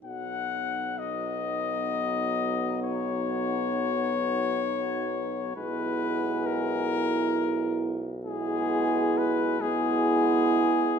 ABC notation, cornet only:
X:1
M:12/8
L:1/8
Q:3/8=44
K:B
V:1 name="Cornet"
f2 d4 c6 | B2 A3 z G2 B G3 |]